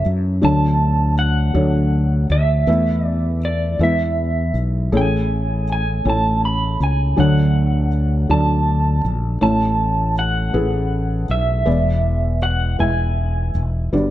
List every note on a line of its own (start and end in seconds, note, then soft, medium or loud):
0.00 0.38 F#1 medium
0.00 0.38 F#2 medium
0.00 0.41 F#3 medium
0.00 0.45 E4 medium
0.00 0.42 A4 medium
0.00 0.42 C#5 medium
0.00 0.11 E5 medium
0.06 0.40 F#2 medium
0.41 2.63 D2 medium
0.41 1.51 D2 medium
0.41 2.63 D3 medium
0.41 1.13 F#3 medium
0.41 1.13 D4 medium
0.41 1.13 A4 medium
0.41 1.13 C#5 medium
0.41 1.15 A5 medium
1.19 2.27 F#5 medium
1.54 2.26 D2 medium
1.54 2.25 F#3 medium
1.54 2.25 D4 medium
1.54 2.26 A4 medium
1.54 2.26 C#5 medium
2.30 2.64 D2 medium
2.30 3.06 E5 medium
2.67 3.76 E2 medium
2.67 3.76 E3 medium
2.67 3.38 A3 medium
2.67 3.38 E4 medium
2.67 3.38 B4 medium
2.67 3.39 E5 medium
3.06 3.39 D5 medium
3.45 3.82 D5 medium
3.79 4.51 E2 medium
3.79 4.89 E2 medium
3.79 4.89 E3 medium
3.79 4.51 G#3 medium
3.79 4.51 E4 medium
3.79 4.51 B4 medium
3.79 4.51 E5 medium
3.83 4.62 E5 medium
4.54 4.89 B1 medium
4.92 6.01 A1 loud
4.92 7.14 A1 medium
4.92 7.14 A2 medium
4.92 5.64 E4 medium
4.92 5.63 G#4 medium
4.92 5.63 A4 medium
4.92 5.64 C#5 medium
4.97 5.71 G#5 medium
5.72 6.09 G#5 medium
6.05 6.76 A1 medium
6.05 6.76 A3 medium
6.05 6.76 E4 medium
6.05 6.76 A4 medium
6.05 6.76 C#5 medium
6.09 6.45 A5 loud
6.45 6.83 B5 medium
6.80 7.14 C#2 medium
6.80 7.17 G#5 medium
7.16 9.37 D2 medium
7.16 8.26 D2 medium
7.16 9.38 D3 medium
7.16 7.88 F#3 medium
7.16 7.88 D4 medium
7.16 7.88 A4 medium
7.16 7.88 C#5 medium
7.16 8.27 F#5 medium
8.29 9.00 D2 medium
8.29 9.00 F#3 medium
8.29 9.00 D4 medium
8.29 9.00 A4 medium
8.29 9.00 D5 medium
8.29 9.10 A5 loud
9.05 9.39 A#1 medium
9.41 11.62 A1 medium
9.41 10.50 A1 medium
9.41 11.62 A2 medium
9.41 10.12 A3 medium
9.41 10.12 E4 medium
9.41 10.12 A4 medium
9.41 10.12 C#5 medium
9.41 10.18 A5 medium
10.19 11.31 F#5 medium
10.53 11.25 A1 medium
10.53 11.25 E4 medium
10.53 11.25 G#4 medium
10.53 11.25 A4 medium
10.53 11.25 B4 medium
11.29 11.63 B1 medium
11.29 12.43 E5 medium
11.65 12.75 E1 medium
11.65 13.88 E2 medium
11.65 13.88 E3 medium
11.65 12.37 G#3 medium
11.65 12.37 E4 medium
11.65 12.37 B4 medium
11.65 12.37 D5 medium
12.43 12.80 F#5 medium
12.79 13.51 E1 medium
12.79 13.50 G#3 medium
12.79 13.50 E4 medium
12.79 13.50 B4 medium
12.79 13.50 E5 medium
12.79 13.61 G#5 medium
13.55 13.89 E1 medium
13.93 14.11 G1 medium
13.93 14.11 G2 medium
13.93 14.11 G3 medium
13.93 14.11 F#4 medium
13.93 14.11 B4 medium
13.93 14.11 D5 medium